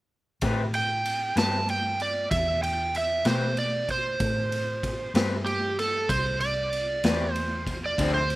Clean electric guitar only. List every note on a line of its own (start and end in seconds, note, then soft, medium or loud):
0.42 0.62 A3 medium
0.42 0.62 C4 medium
0.42 0.62 G4 medium
0.42 0.62 B4 medium
1.36 1.56 A3 soft
1.36 1.56 C4 medium
1.36 1.56 G4 medium
1.36 1.56 B4 medium
3.25 3.46 A3 medium
3.25 3.45 C4 medium
3.25 3.45 G4 medium
3.25 3.44 B4 medium
5.15 5.34 A3 medium
5.15 5.34 C4 medium
5.15 5.34 G4 medium
5.15 5.34 B4 medium
7.04 7.23 A3 medium
7.04 7.23 C4 medium
7.04 7.23 G4 medium
7.04 7.23 B4 medium
7.99 8.17 D3 medium
7.99 8.18 F3 medium
7.99 8.18 C4 medium
7.99 8.18 E4 medium